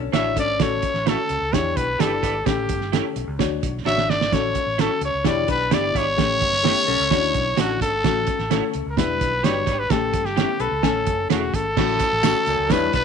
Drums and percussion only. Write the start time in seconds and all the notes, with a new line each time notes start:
0.13 snare, closed hi-hat
0.36 kick, closed hi-hat
0.60 kick, snare, closed hi-hat
0.82 kick, closed hi-hat
0.94 snare
1.07 snare, closed hi-hat
1.29 closed hi-hat
1.53 kick, snare, closed hi-hat
1.77 kick, closed hi-hat
2.00 snare, closed hi-hat
2.23 kick, closed hi-hat
2.46 kick, snare, closed hi-hat
2.69 kick, closed hi-hat
2.81 snare
2.93 snare, closed hi-hat
3.16 closed hi-hat
3.39 kick, snare, closed hi-hat
3.63 kick, closed hi-hat
3.86 snare
3.98 snare
4.10 snare
4.21 snare
4.32 kick, snare, closed hi-hat
4.55 kick, closed hi-hat
4.79 snare, closed hi-hat
5.01 closed hi-hat
5.24 kick, snare, closed hi-hat
5.48 kick, closed hi-hat
5.71 snare, closed hi-hat
5.95 kick, closed hi-hat
6.18 kick, snare, closed hi-hat
6.41 kick, closed hi-hat
6.53 snare
6.65 snare, closed hi-hat
6.87 closed hi-hat
7.11 kick, snare, closed hi-hat
7.34 kick, closed hi-hat
7.57 snare, closed hi-hat
7.81 kick, closed hi-hat
8.04 kick, snare, closed hi-hat
8.27 kick, closed hi-hat
8.39 snare
8.51 snare, closed hi-hat
8.74 closed hi-hat
8.97 kick, snare, closed hi-hat
9.21 kick, closed hi-hat
9.44 snare, closed hi-hat
9.67 kick, closed hi-hat
9.90 kick, snare, closed hi-hat
10.13 kick, closed hi-hat
10.25 snare
10.37 snare, closed hi-hat
10.60 closed hi-hat
10.83 kick, snare, closed hi-hat
11.07 kick, closed hi-hat
11.30 snare, closed hi-hat
11.54 kick, closed hi-hat
11.77 kick, snare, crash
11.99 kick, closed hi-hat, tambourine
12.23 snare, clap, closed hi-hat, tambourine
12.46 closed hi-hat, tambourine
12.70 kick, snare, closed hi-hat, tambourine
12.93 kick, closed hi-hat